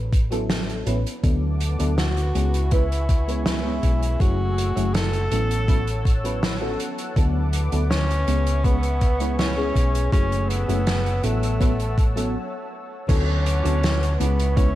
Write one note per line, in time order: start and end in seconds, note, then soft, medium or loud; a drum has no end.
0.00 0.82 A1 medium
0.13 kick loud
0.13 closed hi-hat medium
0.31 0.82 F#3 medium
0.31 0.82 B3 medium
0.31 0.82 C#4 medium
0.31 0.83 E4 medium
0.31 0.83 A4 loud
0.31 closed hi-hat medium
0.50 snare loud
0.50 closed hi-hat medium
0.69 closed hi-hat medium
0.86 1.03 A1 medium
0.86 0.97 F#3 medium
0.86 0.97 B3 medium
0.86 0.97 C#4 medium
0.86 0.98 E4 medium
0.86 0.98 B4 medium
0.86 closed hi-hat medium
1.06 closed hi-hat medium
1.23 1.75 D2 medium
1.23 1.75 F#3 medium
1.23 1.75 B3 medium
1.23 1.75 D4 medium
1.23 1.75 E4 medium
1.23 1.76 A4 medium
1.23 4.17 B4 medium
1.23 2.34 F#5 medium
1.23 2.34 A5 medium
1.23 2.34 D6 medium
1.23 kick loud
1.23 closed hi-hat medium
1.60 closed hi-hat medium
1.79 2.31 D2 medium
1.79 1.89 F#3 medium
1.79 1.90 B3 medium
1.79 1.90 D4 medium
1.79 1.90 E4 medium
1.79 1.90 A4 medium
1.79 closed hi-hat medium
1.98 2.74 F#4 medium
1.98 snare loud
1.98 closed hi-hat medium
2.17 closed hi-hat soft
2.34 3.79 C#2 medium
2.34 2.67 G#3 medium
2.34 2.67 B3 medium
2.34 2.68 C#4 medium
2.34 2.68 E4 medium
2.34 2.68 G#4 medium
2.34 4.18 E5 medium
2.34 5.28 G#5 medium
2.34 4.18 C#6 medium
2.34 closed hi-hat medium
2.54 closed hi-hat medium
2.71 2.82 G#3 medium
2.71 2.83 B3 medium
2.71 2.83 C#4 medium
2.71 3.45 E4 medium
2.71 2.83 E4 medium
2.71 2.83 B4 medium
2.71 kick loud
2.71 closed hi-hat medium
2.92 closed hi-hat medium
3.09 kick loud
3.09 closed hi-hat medium
3.28 3.60 G#3 medium
3.28 3.60 B3 medium
3.28 3.61 C#4 medium
3.28 3.61 E4 medium
3.28 3.61 B4 medium
3.28 closed hi-hat medium
3.46 4.22 E4 medium
3.46 snare loud
3.46 closed hi-hat medium
3.64 4.15 G#3 medium
3.64 4.16 B3 medium
3.64 4.16 C#4 medium
3.64 4.16 E4 medium
3.64 4.16 G#4 medium
3.83 4.15 B1 medium
3.83 kick medium
3.83 closed hi-hat medium
4.02 closed hi-hat medium
4.19 4.72 F#1 medium
4.19 4.71 F#3 medium
4.19 4.72 A3 medium
4.19 5.30 A3 medium
4.19 4.72 C#4 medium
4.19 4.72 E4 medium
4.19 4.96 F#4 loud
4.19 4.72 G#4 medium
4.19 8.24 F#5 medium
4.19 7.14 E6 medium
4.19 kick loud
4.19 closed hi-hat medium
4.58 closed hi-hat medium
4.75 5.27 F#1 medium
4.75 4.86 F#3 medium
4.75 4.86 A3 medium
4.75 4.86 C#4 medium
4.75 4.86 E4 medium
4.75 4.87 G#4 medium
4.75 closed hi-hat medium
4.94 6.42 A4 loud
4.94 snare loud
4.94 closed hi-hat medium
5.13 closed hi-hat medium
5.31 6.75 A1 medium
5.31 5.64 F#3 medium
5.31 5.64 B3 medium
5.31 5.64 C#4 medium
5.31 5.64 E4 medium
5.31 5.65 A4 medium
5.31 7.15 C#5 medium
5.31 8.25 A5 medium
5.31 closed hi-hat medium
5.51 closed hi-hat medium
5.68 5.79 F#3 medium
5.68 5.79 B3 medium
5.68 5.79 C#4 medium
5.68 5.79 E4 medium
5.68 5.79 B4 loud
5.68 kick loud
5.68 closed hi-hat medium
5.87 closed hi-hat medium
6.05 kick loud
6.05 closed hi-hat medium
6.24 6.57 F#3 medium
6.24 6.57 B3 medium
6.24 6.57 C#4 medium
6.24 6.57 E4 medium
6.24 6.58 B4 medium
6.24 closed hi-hat medium
6.43 snare loud
6.43 closed hi-hat medium
6.61 7.12 F#3 medium
6.61 7.12 B3 medium
6.61 7.12 C#4 medium
6.61 7.12 E4 medium
6.61 7.13 A4 medium
6.80 closed hi-hat medium
6.98 closed hi-hat medium
7.16 7.68 D2 medium
7.16 7.68 F#3 medium
7.16 7.68 B3 medium
7.16 7.68 D4 medium
7.16 7.68 E4 medium
7.16 7.68 A4 medium
7.16 10.10 B4 medium
7.16 8.27 D6 medium
7.16 kick loud
7.16 closed hi-hat medium
7.53 closed hi-hat medium
7.72 8.23 D2 medium
7.72 7.82 F#3 medium
7.72 7.82 B3 medium
7.72 7.83 D4 medium
7.72 7.83 E4 medium
7.72 7.83 A4 medium
7.72 closed hi-hat medium
7.90 8.66 C#4 loud
7.90 snare loud
7.90 closed hi-hat medium
8.10 closed hi-hat medium
8.27 9.71 C#2 medium
8.27 8.60 G#3 medium
8.27 8.60 B3 medium
8.27 8.60 C#4 medium
8.27 8.60 E4 medium
8.27 8.61 G#4 medium
8.27 10.11 E5 medium
8.27 11.21 G#5 medium
8.27 10.11 C#6 medium
8.27 closed hi-hat medium
8.46 closed hi-hat medium
8.64 8.75 G#3 medium
8.64 8.75 B3 medium
8.64 9.38 B3 loud
8.64 8.75 C#4 medium
8.64 8.75 E4 medium
8.64 8.76 B4 medium
8.64 kick loud
8.64 closed hi-hat medium
8.83 closed hi-hat medium
9.01 kick loud
9.01 closed hi-hat medium
9.20 9.53 G#3 medium
9.20 9.53 B3 medium
9.20 9.53 C#4 medium
9.20 9.53 E4 medium
9.20 9.53 B4 medium
9.20 closed hi-hat medium
9.39 10.09 C#4 loud
9.39 snare loud
9.39 closed hi-hat medium
9.57 10.08 G#3 medium
9.57 10.08 B3 medium
9.57 10.08 C#4 medium
9.57 10.09 E4 medium
9.57 10.09 G#4 medium
9.75 10.07 B1 medium
9.75 kick medium
9.75 closed hi-hat medium
9.95 closed hi-hat medium
10.12 10.64 F#1 medium
10.12 10.64 F#3 medium
10.12 10.64 A3 medium
10.12 11.23 A3 medium
10.12 10.51 C#4 loud
10.12 10.64 C#4 medium
10.12 10.65 E4 medium
10.12 10.65 G#4 medium
10.12 13.06 F#5 medium
10.12 13.06 E6 medium
10.12 kick loud
10.12 closed hi-hat medium
10.32 closed hi-hat medium
10.49 11.25 B3 loud
10.49 closed hi-hat medium
10.68 11.19 F#1 loud
10.68 10.78 F#3 medium
10.68 10.79 A3 medium
10.68 10.79 C#4 medium
10.68 10.79 E4 medium
10.68 10.79 G#4 loud
10.68 closed hi-hat medium
10.87 snare loud
10.87 closed hi-hat medium
11.06 closed hi-hat soft
11.22 12.35 A1 medium
11.22 11.56 F#3 medium
11.22 12.35 A3 medium
11.22 11.56 B3 medium
11.22 11.56 C#4 medium
11.22 11.56 E4 medium
11.22 11.57 A4 medium
11.22 13.07 C#5 medium
11.22 13.07 A5 medium
11.22 closed hi-hat medium
11.43 closed hi-hat medium
11.60 11.71 F#3 medium
11.60 11.71 B3 medium
11.60 11.71 C#4 medium
11.60 11.72 E4 medium
11.60 11.72 B4 loud
11.60 kick loud
11.60 closed hi-hat medium
11.80 closed hi-hat soft
11.98 kick loud
11.98 closed hi-hat medium
12.16 12.34 F#3 medium
12.16 12.34 B3 medium
12.16 12.35 C#4 medium
12.16 12.35 E4 medium
12.16 12.35 A4 loud
12.16 closed hi-hat medium
13.08 13.60 D2 medium
13.08 13.60 D3 medium
13.08 13.60 F#3 medium
13.08 13.60 B3 medium
13.08 14.14 C#4 medium
13.08 13.61 E4 medium
13.08 13.61 A4 medium
13.08 14.75 B4 medium
13.08 14.19 F#5 medium
13.08 14.19 A5 medium
13.08 14.19 D6 medium
13.08 kick loud
13.08 closed hi-hat medium
13.08 crash loud
13.46 closed hi-hat medium
13.63 14.16 D2 medium
13.63 13.74 F#3 medium
13.63 13.75 B3 medium
13.63 13.75 D4 medium
13.63 13.75 E4 medium
13.63 13.75 A4 loud
13.63 closed hi-hat medium
13.83 snare loud
13.83 closed hi-hat medium
14.03 closed hi-hat medium
14.14 14.21 C#4 medium
14.19 14.75 C#2 medium
14.19 14.52 G#3 medium
14.19 14.52 B3 medium
14.19 14.59 B3 medium
14.19 14.53 C#4 medium
14.19 14.53 E4 medium
14.19 14.53 G#4 medium
14.19 14.75 E5 medium
14.19 14.75 G#5 medium
14.19 14.75 C#6 medium
14.19 closed hi-hat loud
14.39 closed hi-hat medium
14.56 14.67 G#3 medium
14.56 14.67 B3 medium
14.56 14.68 C#4 medium
14.56 14.75 C#4 medium
14.56 14.68 E4 medium
14.56 14.68 B4 medium
14.56 kick loud
14.56 closed hi-hat medium